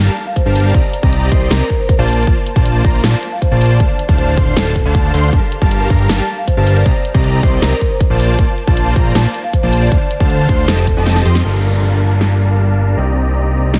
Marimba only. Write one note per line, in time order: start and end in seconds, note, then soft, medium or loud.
0.27 0.34 F5 medium
0.36 0.42 C5 medium
0.46 0.52 C5 medium
0.65 0.78 D5 medium
1.32 1.47 C5 medium
1.60 1.67 A#4 medium
1.79 2.08 C5 medium
3.32 3.40 F5 medium
3.42 3.48 C5 medium
3.51 3.58 C5 medium
3.71 3.84 D5 medium
4.18 4.25 C5 medium
4.28 4.34 C5 medium
4.57 4.85 A4 medium
6.38 6.46 F5 medium
6.48 6.54 C5 medium
6.57 6.63 C5 medium
6.76 6.90 D5 medium
7.43 7.58 C5 medium
7.62 7.69 A#4 medium
7.72 7.78 A#4 medium
7.91 8.20 C5 medium
9.44 9.52 F5 medium
9.54 9.60 C5 medium
9.63 9.69 C5 medium
9.82 9.95 D5 medium
10.30 10.36 C5 medium
10.39 10.46 C5 medium
10.49 10.64 C5 medium
10.68 10.97 A4 medium